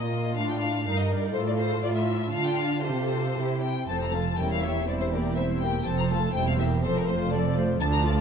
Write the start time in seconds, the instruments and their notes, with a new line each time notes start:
Already playing: cello section A#2, violin section A#3 F4
0.00 violin section D#5
0.37 cello section A2, viola section D4, violin section D4 F5
0.50 violin section G5
0.61 violin section F5
0.86 cello section G2, violin section D#4 F5, viola section A#4
0.99 violin section D#5
1.10 violin section D5
1.34 cello section A2, violin section F4 C5, viola section A4
1.47 violin section D5
1.59 violin section C5
1.83 cello section A2, violin section F4 D5, viola section F4
1.95 violin section E5
2.33 cello section D3, violin section D4 F4 F5, viola section F4
2.46 violin section G5
2.59 violin section F5
2.83 cello section C3, violin section F4 A4 C5, viola section G4
3.37 cello section C3, violin section E4 G4
3.64 violin section G5
3.88 double bass section F1, cello section F2, viola section F3 C4, violin section A4 C5 A5
4.04 violin section A#5
4.14 viola section A3, violin section F4 A4 A5
4.37 double bass section E1, cello section E2, viola section G3 C#4, violin section E4 A#4 G5
4.52 violin section F5
4.63 viola section A#3 E4, violin section G4 C#5 E5
4.88 viola section G3 C4, violin section E4 C5 D5
5.01 violin section C5
5.13 viola section A#3 E4, violin section G4 A#4 D5
5.36 viola section G3 C4, violin section E4 C5 E5
5.61 viola section A#3 E4, violin section G4 A#4 G5
5.87 double bass section F1, cello section F2, viola section F3 C4, violin section A4 C5 A5
6.00 violin section A#5
6.10 viola section A3, violin section F4 A4 A5
6.34 double bass section E1, cello section E2, viola section G3 C4, violin section E4 C5 G5
6.48 violin section F5
6.60 viola section A#3 E4, violin section G4 A#4 E5
6.83 double bass section F1, cello section F2, viola section F3 C4, violin section A4 C5
6.96 violin section A#4
7.07 viola section A3, violin section F4 C5
7.32 viola section F3 C4, violin section A4 D5
7.55 viola section A3, violin section F4 C5
7.80 double bass section D2, cello section D2, viola section F3 D4, violin section D4 A4 A5
7.94 violin section A#5
8.04 viola section A3 F4, violin section F4 D5 A5